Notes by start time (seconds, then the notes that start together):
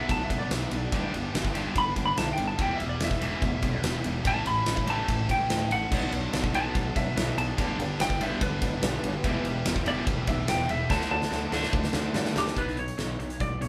Already playing: B2 F#3 B3 D4 F#4
0.09 B1 B2 F#3 A5, kick, ride
0.24 E5
0.30 F#2 B2 F#3, kick, ride
0.39 D5
0.51 B1 B2 F#3, snare, ride
0.71 B1 B2 F#3, ride
0.92 G1 G2 D3 G3 B3 D4 G4, kick, ride
1.14 G1 G2 D3, ride
1.34 G1 G2 D3, snare, ride
1.45 kick, snare
1.54 G1 G2 D3 G3 B3 D4 G4, ride
1.76 G1 G2 D3 B5, kick, ride
1.96 G1 G2 D3, kick, ride
2.06 B5
2.17 B1 G2 D3 A5, snare, ride
2.33 G5
2.37 G1 G2 D3, ride
2.47 A5
2.59 E1 E2 B2 E3 G3 B3 E4 G5, kick, ride
2.75 E5
2.80 E1 E2 B2, ride
2.89 D5
3.00 E1 E2 B2 E5, snare, ride
3.11 kick, snare
3.20 E1 E2 B2 E3 G3 B3 E4, ride
3.42 E1 E2 B2, kick, ride
3.62 B1 E2 B2, kick, ride
3.83 E1 E2 B2, snare, ride
4.04 E1 E2 B2, ride
4.25 A1 A2 E3 A3 C#4 E4 A5, kick, ride
4.46 A1 A2 E3 B5, ride
4.66 A1 A2 E3, snare, ride
4.77 kick
4.86 A1 A2 E3 A3 C#4 E4, ride
4.90 A5
5.08 A1 A2 E3, kick, ride
5.29 A1 A2 E3 G5, kick, ride
5.50 D2 A2 E3, snare, ride
5.71 A1 A2 E3 F#5, ride
5.91 B1 B2 F#3 B3 D4 F#4 B4 C#5, kick, crash
6.12 B1 B2 F#3 D4 B4 C#5, ride
6.32 B1 B2 F#3 D4 B4 D5, snare, ride
6.44 kick
6.53 B1 B2 F#3 B3 D4 F#4 B4 C#5 A5, ride
6.75 B1 B2 F#3 D4 B4 C#5, kick, ride
6.95 F#2 B2 F#3 D4 B4 C#5 E5, kick, ride
7.16 B1 B2 F#3 D4 B4 C#5, snare, ride
7.37 B1 B2 F#3 D4 B4 C#5 A5, ride
7.57 G1 G2 D3 G3 B3 D4 G4 B4 D5, kick, ride
7.78 G1 G2 D3 G4 B4 D5, ride
7.99 G1 G2 D3 G4 B4 D5 G5, snare, ride
8.10 kick, snare
8.19 G1 G2 D3 G3 B3 D4 G4 B4 D5 E5, ride
8.41 G1 G2 D3 G4 B4 C#5, kick, ride
8.62 G1 G2 D3 G4 B4 D5, kick, ride
8.82 B1 G2 D3 G4 B4 D5, snare, ride
9.03 G1 G2 D3 G4 B4 C#5, ride
9.24 E1 E2 B2 E3 G3 B3 G4 B4 E5, kick, ride
9.44 E1 E2 B2 G4 B4 E5, ride
9.65 E1 E2 B2 B4 E5, snare, ride
9.76 kick, snare
9.85 E1 E2 B2 E3 G3 B3 G4 D5 E5, ride
10.07 E1 E2 B2 G4 B4 E5, kick, ride
10.27 B1 E2 B2 G4 B4 E5, kick, ride
10.48 E1 E2 B2 G4 B4 E5 G5, snare, ride
10.69 E1 E2 B2 G4 B4 E5, ride
10.89 D2 D3 A3 D4 F#4 A4 D5 A5, kick, snare
11.01 snare
11.10 D2 D3 A3 F#4 A4 D5 A5
11.22 snare
11.31 D2 D3 A3 F#4 A4 D5, snare
11.52 D2 D3 A3 D4 F#4 A4 D5, snare
11.63 snare
11.73 D2 D3 A3 F#4 A4 D5, kick
11.83 snare
11.93 D2 D3 A3 F#4 A4 D5, snare
12.14 G2 D3 A3 F#4 A4 D5, snare
12.25 snare
12.36 D2 D3 A3 F#4 G4 A4 D5, snare
12.47 snare
12.56 B1 B2 F#3 B3 B4, kick, closed hi-hat
12.67 snare
12.77 B2 F#3 C#5, closed hi-hat
12.88 closed hi-hat
12.98 B1 B2 F#3, snare, closed hi-hat
13.19 B1 B2 F#3, closed hi-hat
13.30 closed hi-hat
13.40 B1 B2 F#3 D5, kick, closed hi-hat
13.61 B1 B2 F#3 C#5, closed hi-hat